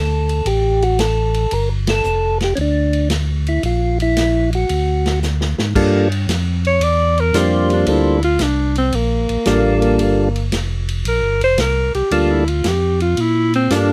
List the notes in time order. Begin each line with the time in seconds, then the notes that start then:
Already playing: D2 A4
0.29 ride
0.45 A1 G4, ride
0.82 F#4, ride
0.99 A4, snare, hi-hat pedal, ride
1.34 ride
1.51 G1 A#4, ride
1.87 A4, snare, ride
2.04 F1, hi-hat pedal
2.41 G4, snare, ride
2.55 D2 C#4, ride
2.61 D4
2.93 ride
3.10 snare, hi-hat pedal, ride
3.47 E4, ride
3.63 A#1 F4, ride
4.00 E4, ride
4.17 snare, hi-hat pedal, ride
4.53 F#4, ride
4.69 D2, ride
5.06 snare, ride
5.23 snare, hi-hat pedal
5.41 snare
5.58 G#2, snare
5.75 G2 G3 A#3 D4 F4 A4, kick, crash
6.12 ride
6.28 F2, snare, hi-hat pedal, ride
6.65 C#5, ride
6.80 E2 D5, ride
7.18 A#4, ride
7.33 F2 G3 A#3 D4 F4 C5, snare, hi-hat pedal, ride
7.38 G4
7.70 D4, ride
7.86 D2 G3 A#3 D4 E4 F4 A4, ride
8.23 F4, ride
8.39 C2 D4, snare, hi-hat pedal, ride
8.75 C4, ride
8.93 A#1 A#3, ride
9.29 A#1, ride
9.46 A1 G3 A#3 D4 F4 A4, snare, hi-hat pedal, ride
9.82 ride
9.98 G1, ride
10.36 ride
10.51 F1, snare, hi-hat pedal, ride
10.88 ride
11.05 A#1 A#4, ride
11.22 G1
11.40 F1 C5, ride
11.58 C2 A#4, snare, hi-hat pedal, ride
11.95 C2 G4, ride
12.11 D2 G3 A#3 D4 F4 A4, ride
12.32 E4
12.48 F4, ride
12.64 F2 G4, snare, hi-hat pedal, ride
13.00 F4, ride
13.17 A#2, ride
13.21 E4
13.54 C4, ride
13.70 G2 G3 A#3 D4 F4 A4, snare, hi-hat pedal, ride